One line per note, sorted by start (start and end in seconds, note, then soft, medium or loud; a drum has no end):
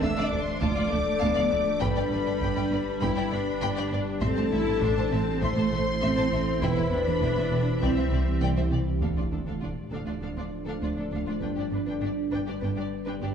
0.00 1.83 D1 medium
0.00 0.08 D2 medium
0.00 1.82 F3 medium
0.00 4.22 D4 medium
0.00 0.62 D4 medium
0.00 1.82 A4 medium
0.00 4.22 D5 medium
0.00 0.22 E5 loud
0.00 0.08 F5 medium
0.00 0.08 A5 medium
0.00 0.22 E6 medium
0.00 taiko medium
0.17 0.24 D2 medium
0.17 0.23 D5 medium
0.17 0.23 F5 soft
0.22 0.42 D5 medium
0.22 0.42 D6 medium
0.32 0.38 D2 medium
0.32 0.39 D2 soft
0.32 0.38 A4 medium
0.32 0.38 D5 soft
0.42 0.62 C5 medium
0.42 0.62 C6 medium
0.61 0.68 D2 medium
0.61 0.92 F4 medium
0.61 1.80 D5 loud
0.61 0.67 F5 medium
0.61 0.67 A5 medium
0.61 1.80 D6 medium
0.61 taiko medium
0.76 0.83 D2 soft
0.76 0.82 D5 medium
0.76 0.82 F5 soft
0.90 0.98 D2 medium
0.90 0.99 D2 medium
0.90 1.22 A3 medium
0.90 0.96 A4 medium
0.90 0.96 D5 medium
1.20 1.28 D2 medium
1.20 1.52 B3 medium
1.20 1.26 F5 medium
1.20 1.26 A5 medium
1.35 1.43 D2 soft
1.35 1.41 D5 medium
1.35 1.41 F5 medium
1.50 1.58 D2 soft
1.50 1.82 A3 medium
1.50 1.56 A4 medium
1.50 1.56 D5 soft
1.80 1.87 G1 medium
1.80 4.23 G1 medium
1.80 1.88 G2 medium
1.80 4.22 G3 medium
1.80 3.00 G3 medium
1.80 4.22 G4 medium
1.80 3.01 B4 medium
1.80 1.87 G5 medium
1.80 1.86 B5 medium
1.80 3.00 B5 medium
1.80 taiko medium
1.96 2.03 G2 medium
1.96 2.03 D5 medium
1.96 2.02 G5 soft
2.11 2.18 G1 medium
2.11 2.18 G2 medium
2.11 2.18 B4 soft
2.11 2.18 D5 medium
2.26 2.33 G2 soft
2.26 2.33 D5 soft
2.26 2.32 G5 soft
2.41 2.48 G1 medium
2.41 2.48 G2 medium
2.41 2.48 G5 medium
2.41 2.48 B5 medium
2.41 taiko medium
2.57 2.63 G2 medium
2.57 2.63 D5 soft
2.57 2.63 G5 medium
2.71 2.78 G1 medium
2.71 2.78 G2 medium
2.71 2.78 B4 medium
2.71 2.77 D5 soft
3.02 3.08 G1 medium
3.02 3.08 G2 medium
3.02 3.32 E4 medium
3.02 3.90 B4 medium
3.02 3.08 G5 medium
3.02 3.08 B5 medium
3.02 3.90 B5 medium
3.02 taiko medium
3.16 3.23 G2 medium
3.16 3.22 D5 medium
3.16 3.23 G5 medium
3.31 3.38 G1 medium
3.31 3.38 G2 medium
3.31 4.22 D4 medium
3.31 3.38 B4 medium
3.31 3.38 D5 medium
3.61 3.68 G1 medium
3.61 3.68 G2 medium
3.61 3.68 G5 medium
3.61 3.68 B5 medium
3.76 3.83 G2 medium
3.76 3.82 D5 medium
3.76 3.83 G5 medium
3.92 3.98 G1 soft
3.92 3.98 G2 medium
3.92 3.98 B4 soft
3.92 3.98 D5 medium
4.21 4.28 A1 medium
4.21 6.63 A1 medium
4.21 4.28 A2 medium
4.21 9.03 E3 medium
4.21 4.52 C4 medium
4.21 9.02 E4 medium
4.21 5.38 A4 medium
4.21 6.63 A4 medium
4.21 6.63 C5 medium
4.21 4.27 E5 medium
4.21 5.37 A5 medium
4.21 4.27 C6 medium
4.21 taiko medium
4.37 4.43 A2 medium
4.37 4.43 C5 soft
4.37 4.43 A5 soft
4.51 4.58 A1 medium
4.51 4.58 A2 medium
4.51 4.81 E4 medium
4.51 4.59 A4 medium
4.51 4.59 E5 medium
4.67 4.73 A2 medium
4.67 4.74 C5 soft
4.67 4.73 A5 soft
4.81 4.88 A1 medium
4.81 4.88 A2 medium
4.81 5.12 D4 medium
4.81 4.89 E5 medium
4.81 4.89 C6 medium
4.81 taiko medium
4.97 5.03 A2 medium
4.97 5.04 C5 soft
4.97 5.04 A5 medium
5.12 5.18 A1 medium
5.12 5.18 A2 medium
5.12 5.42 C4 medium
5.12 5.18 A4 soft
5.12 5.18 E5 soft
5.41 5.48 A1 medium
5.41 5.48 A2 medium
5.41 6.02 A3 medium
5.41 6.59 C5 loud
5.41 5.48 E5 medium
5.41 6.62 C6 medium
5.41 5.48 C6 medium
5.41 taiko medium
5.57 5.63 A2 soft
5.57 5.63 C5 soft
5.57 5.63 A5 soft
5.72 5.78 A1 soft
5.72 5.78 A2 medium
5.72 5.78 A4 medium
5.72 5.79 E5 soft
6.01 6.08 A1 medium
6.01 6.08 A2 medium
6.01 6.60 C4 medium
6.01 6.08 E5 medium
6.01 6.08 C6 medium
6.17 6.23 A2 soft
6.17 6.23 C5 medium
6.17 6.23 A5 soft
6.32 6.38 A1 soft
6.32 6.38 A2 soft
6.32 6.39 A4 soft
6.32 6.39 E5 soft
6.61 6.68 E1 medium
6.61 7.83 E1 medium
6.61 6.68 E2 medium
6.61 6.92 E4 medium
6.61 9.02 G4 medium
6.61 7.79 B4 medium
6.61 7.82 B4 medium
6.61 6.68 E5 medium
6.61 6.69 G5 medium
6.61 7.82 B5 medium
6.61 taiko medium
6.77 6.83 E2 soft
6.77 6.83 B4 soft
6.77 6.83 E5 soft
6.91 6.97 E1 soft
6.91 6.98 E2 medium
6.91 7.82 D4 medium
6.91 6.98 G4 soft
6.91 6.98 B4 soft
7.07 7.13 E2 soft
7.07 7.13 B4 soft
7.07 7.13 E5 soft
7.21 7.27 E1 medium
7.21 7.28 E2 medium
7.21 7.29 E5 medium
7.21 7.29 G5 medium
7.21 taiko medium
7.37 7.43 E2 soft
7.37 7.44 B4 soft
7.37 7.44 E5 soft
7.51 7.57 E1 soft
7.51 7.58 E2 soft
7.51 7.57 G4 soft
7.51 7.58 B4 soft
7.81 7.87 C2 medium
7.81 9.02 C2 medium
7.81 7.88 C2 medium
7.81 8.70 C4 medium
7.81 8.42 E4 medium
7.81 9.02 D5 medium
7.81 7.88 D5 medium
7.81 8.42 E5 medium
7.81 7.89 G5 soft
7.81 taiko medium
7.97 8.03 C2 soft
7.97 8.03 C5 soft
7.97 8.03 E5 soft
8.11 8.17 C2 soft
8.11 8.18 C2 soft
8.11 8.18 G4 soft
8.11 8.19 D5 soft
8.41 8.47 C2 medium
8.41 8.48 C2 medium
8.41 8.48 D5 medium
8.41 8.48 G5 medium
8.57 8.63 C2 soft
8.57 8.63 C5 soft
8.57 8.63 E5 soft
8.71 8.77 C2 soft
8.71 8.78 C2 soft
8.71 8.78 G4 soft
8.71 8.78 D5 soft
9.01 11.44 D1 medium
9.01 9.07 D2 soft
9.01 9.08 D2 soft
9.01 11.39 F3 medium
9.01 9.08 D4 soft
9.01 13.35 D4 medium
9.01 9.09 A4 soft
9.01 11.39 A4 medium
9.01 13.35 D5 medium
9.01 9.08 F5 soft
9.01 taiko soft
9.01 sub drop soft
9.17 9.23 D2 soft
9.17 9.23 D4 soft
9.17 9.23 F4 soft
9.17 9.23 D5 soft
9.31 9.37 D2 soft
9.31 9.38 D2 soft
9.31 9.38 D4 soft
9.31 9.38 A4 soft
9.46 9.53 D2 soft
9.46 9.53 D4 soft
9.46 9.52 A4 soft
9.46 9.54 F5 soft
9.61 9.67 D2 soft
9.61 9.68 D2 soft
9.61 9.68 D4 soft
9.61 9.67 F4 soft
9.61 9.69 D5 soft
9.90 9.97 D2 soft
9.90 9.98 D2 soft
9.90 9.99 D4 soft
9.90 9.97 A4 soft
9.90 10.00 F5 soft
10.06 10.13 D2 soft
10.06 10.13 D4 soft
10.06 10.12 F4 soft
10.06 10.14 D5 soft
10.21 10.27 D2 soft
10.21 10.28 D2 soft
10.21 10.28 D4 soft
10.21 10.27 A4 soft
10.21 10.29 F5 soft
10.37 10.43 D2 soft
10.37 10.44 D4 soft
10.37 10.43 F4 soft
10.37 10.45 D5 soft
10.66 10.73 D2 soft
10.66 10.73 D4 soft
10.66 10.72 A4 soft
10.66 10.74 F5 soft
10.81 10.87 D2 soft
10.81 10.88 D2 soft
10.81 10.88 D4 soft
10.81 10.88 F4 soft
10.81 10.89 D5 soft
10.96 11.03 D2 soft
10.96 11.02 D4 soft
10.96 11.03 D4 soft
10.96 11.05 A4 soft
11.11 11.18 D2 soft
11.11 11.18 D4 soft
11.11 11.17 A4 soft
11.15 11.21 F5 soft
11.26 11.33 D2 soft
11.26 11.33 D4 soft
11.26 11.32 F4 soft
11.26 11.35 D5 soft
11.40 11.48 G1 soft
11.40 13.35 G1 medium
11.40 11.48 G2 soft
11.40 13.35 G3 medium
11.40 11.49 D4 soft
11.40 11.46 B4 soft
11.40 13.35 B4 medium
11.40 11.49 G5 soft
11.56 11.63 G2 soft
11.56 11.64 D4 soft
11.56 11.63 G4 soft
11.56 11.65 D5 soft
11.71 11.78 G1 soft
11.71 11.78 G2 soft
11.71 11.77 D4 soft
11.71 11.79 D4 soft
11.71 11.80 B4 soft
11.86 11.93 G2 soft
11.86 11.93 D4 soft
11.86 11.92 B4 soft
11.86 11.94 G5 soft
12.01 12.08 G1 soft
12.01 12.08 G2 soft
12.01 12.08 D4 soft
12.01 12.07 G4 soft
12.01 12.10 D5 soft
12.31 12.38 G1 medium
12.31 12.38 G2 soft
12.31 12.38 D4 soft
12.31 12.37 B4 soft
12.31 12.40 G5 soft
12.45 12.53 G2 soft
12.45 12.54 D4 soft
12.45 12.52 G4 soft
12.45 12.54 D5 soft
12.60 12.68 G1 medium
12.60 12.68 G2 medium
12.60 12.68 D4 soft
12.60 12.67 B4 soft
12.60 12.69 G5 medium
12.76 12.83 G2 soft
12.76 12.83 D4 soft
12.76 12.82 G4 soft
12.76 12.85 D5 soft
13.05 13.13 G2 soft
13.05 13.13 D4 medium
13.05 13.12 B4 soft
13.05 13.14 G5 medium
13.21 13.27 G1 soft
13.21 13.28 G2 soft
13.21 13.28 D4 soft
13.21 13.28 G4 soft
13.21 13.29 D5 soft